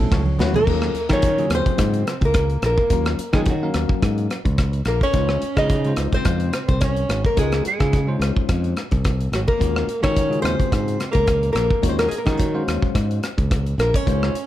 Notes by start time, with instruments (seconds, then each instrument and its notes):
Already playing: tine electric piano F#3 A3 C#4 E4 A4
0.11 fingered electric bass C#2, tine electric piano C#5, kick, cross-stick, ride
0.26 high conga
0.39 fingered electric bass D#2, tine electric piano F#3 A3 C#4 E4 B4, tenor saxophone F#3, nylon-string guitar F#4, snare, low conga
0.54 tenor saxophone A#3, nylon-string guitar A#4, floor tom, high conga
0.67 fingered electric bass D#2, tine electric piano F#3 A#3 C#4 F4 G#4, kick, crash
0.82 cross-stick
0.94 muted fingered electric bass stroke, closed hi-hat
1.09 fingered electric bass D#3, tine electric piano F#3 A#3 C#4 F4 G#4, nylon-string guitar C#5, kick, cross-stick, closed hi-hat
1.13 tenor saxophone C#4
1.22 kick, closed hi-hat
1.38 tine electric piano C#3 F#3 A#3 F4 G#4, closed hi-hat
1.50 fingered electric bass D#2, cross-stick, closed hi-hat
1.54 tenor saxophone C4, nylon-string guitar C5
1.66 kick, closed hi-hat
1.78 fingered electric bass G#2, kick, cross-stick, closed hi-hat
1.94 closed hi-hat
2.07 cross-stick, closed hi-hat
2.21 fingered electric bass C#2, kick, closed hi-hat
2.25 tenor saxophone A#3, nylon-string guitar A#4
2.34 kick, cross-stick, closed hi-hat
2.50 closed hi-hat
2.62 fingered electric bass A#1, tenor saxophone A#3, nylon-string guitar A#4, cross-stick, closed hi-hat
2.77 muted fingered electric bass stroke, kick
2.90 fingered electric bass D#2, tine electric piano F#3 A#3 C#4 F4 A#4, kick, closed hi-hat
3.06 cross-stick, closed hi-hat
3.19 muted fingered electric bass stroke, closed hi-hat
3.33 fingered electric bass D#3, tine electric piano F#3 A#3 C#4 F4 G#4, tenor saxophone G#3, nylon-string guitar G#4, kick, cross-stick, closed hi-hat
3.46 tenor saxophone F#3, nylon-string guitar F#4, kick, closed hi-hat
3.62 tine electric piano F#3 A#3 C#4 A#4 F5
3.74 fingered electric bass D#2, cross-stick, closed hi-hat
3.89 muted fingered electric bass stroke, kick
4.02 fingered electric bass G#2, kick, cross-stick, closed hi-hat
4.18 closed hi-hat
4.31 cross-stick, closed hi-hat
4.45 fingered electric bass C#2, kick, closed hi-hat
4.58 kick, cross-stick, closed hi-hat
4.73 closed hi-hat
4.85 fingered electric bass A#1, tenor saxophone A#3, nylon-string guitar A#4, cross-stick, closed hi-hat
5.01 tenor saxophone C#4, nylon-string guitar C#5, muted fingered electric bass stroke, kick
5.13 fingered electric bass C#2, tine electric piano G#3 C#4 D#4 F4 C5, kick, closed hi-hat
5.29 cross-stick
5.42 muted fingered electric bass stroke, closed hi-hat
5.57 fingered electric bass C#3, tine electric piano G#3 C#4 D#4 F4 G#4, tenor saxophone D#4, nylon-string guitar D#5, kick, cross-stick, closed hi-hat
5.70 kick, closed hi-hat
5.85 tine electric piano C#3 G#3 D#4 F4 C5, closed hi-hat
5.96 fingered electric bass C#2, cross-stick, closed hi-hat
6.12 tenor saxophone C4, nylon-string guitar C5, muted fingered electric bass stroke, kick, closed hi-hat
6.25 fingered electric bass F2, kick, cross-stick, closed hi-hat
6.40 closed hi-hat
6.53 cross-stick, closed hi-hat
6.68 fingered electric bass C2, tenor saxophone C4, nylon-string guitar C5, kick, closed hi-hat
6.81 tenor saxophone C#4, nylon-string guitar C#5, kick, cross-stick, closed hi-hat
6.96 closed hi-hat
7.09 fingered electric bass G#1, cross-stick, closed hi-hat
7.24 tenor saxophone A#3, nylon-string guitar A#4, muted fingered electric bass stroke, kick
7.37 fingered electric bass C#2, tine electric piano G#3 C#4 D#4 F4 A#4, tenor saxophone G#3, nylon-string guitar G#4, kick, closed hi-hat
7.52 cross-stick, closed hi-hat
7.65 tenor saxophone G#3, nylon-string guitar G#4, closed hi-hat
7.79 fingered electric bass C#3, tine electric piano G#3 C#4 D#4 F4 G#4, kick, cross-stick, closed hi-hat
7.93 kick, closed hi-hat
8.07 tine electric piano G#3 C#4 D#4 F4 C5
8.20 fingered electric bass C#2, cross-stick, closed hi-hat
8.36 kick
8.49 fingered electric bass F2, kick, cross-stick, closed hi-hat
8.64 closed hi-hat
8.77 cross-stick, closed hi-hat
8.91 fingered electric bass C2, kick, closed hi-hat
9.05 kick, cross-stick, closed hi-hat
9.21 closed hi-hat
9.32 fingered electric bass G#1, tenor saxophone F#3, nylon-string guitar F#4, cross-stick, closed hi-hat
9.48 tenor saxophone A#3, nylon-string guitar A#4, kick
9.58 fingered electric bass D#2, tine electric piano G#3 C#4 F4 F#4 A#4, kick, closed hi-hat
9.76 cross-stick
9.87 muted fingered electric bass stroke, closed hi-hat
10.02 fingered electric bass D#3, tine electric piano G#3 C#4 F4 F#4 A#4, tenor saxophone C#4, nylon-string guitar C#5, kick, cross-stick, closed hi-hat
10.16 kick, closed hi-hat
10.29 tine electric piano C#3 G#3 F4 F#4 G#4, closed hi-hat
10.42 fingered electric bass D#2, tenor saxophone C4, nylon-string guitar C5, cross-stick, closed hi-hat
10.59 muted fingered electric bass stroke, kick, closed hi-hat
10.72 fingered electric bass G#2, kick, cross-stick, closed hi-hat
10.88 closed hi-hat
11.00 cross-stick, closed hi-hat
11.11 fingered electric bass C#2, tenor saxophone A#3, nylon-string guitar A#4, kick, closed hi-hat
11.27 kick, cross-stick, closed hi-hat
11.43 closed hi-hat
11.52 fingered electric bass A#1, tenor saxophone A#3, nylon-string guitar A#4, closed hi-hat
11.56 cross-stick
11.70 muted fingered electric bass stroke, kick
11.82 fingered electric bass D#2, tine electric piano G#3 C#4 F4 F#4 C#5, kick, closed hi-hat
11.88 tenor saxophone C4, nylon-string guitar C5
11.99 tenor saxophone A#3, nylon-string guitar A#4, cross-stick, closed hi-hat
12.08 tenor saxophone G#3, nylon-string guitar G#4, closed hi-hat
12.12 muted fingered electric bass stroke
12.17 tenor saxophone A#3, nylon-string guitar A#4
12.25 fingered electric bass D#3, tine electric piano G#3 C#4 F4 F#4 A#4, tenor saxophone G#3, nylon-string guitar G#4, kick, cross-stick, closed hi-hat
12.37 tenor saxophone F#3, nylon-string guitar F#4, kick, closed hi-hat
12.54 tine electric piano G#3 C#4 F#4 C5 F5
12.68 fingered electric bass D#2, cross-stick, closed hi-hat
12.82 muted fingered electric bass stroke, kick
12.95 fingered electric bass G#2, kick, cross-stick, closed hi-hat
13.11 closed hi-hat
13.23 cross-stick, closed hi-hat
13.38 fingered electric bass C#2, kick, closed hi-hat
13.51 kick, cross-stick, closed hi-hat
13.66 closed hi-hat
13.78 fingered electric bass A#1, tenor saxophone A#3, nylon-string guitar A#4, cross-stick, closed hi-hat
13.94 tenor saxophone C#4, nylon-string guitar C#5, kick
14.07 fingered electric bass C#2, tine electric piano G#3 C#4 D#4 F4 C5, kick, closed hi-hat
14.23 cross-stick
14.34 muted fingered electric bass stroke, closed hi-hat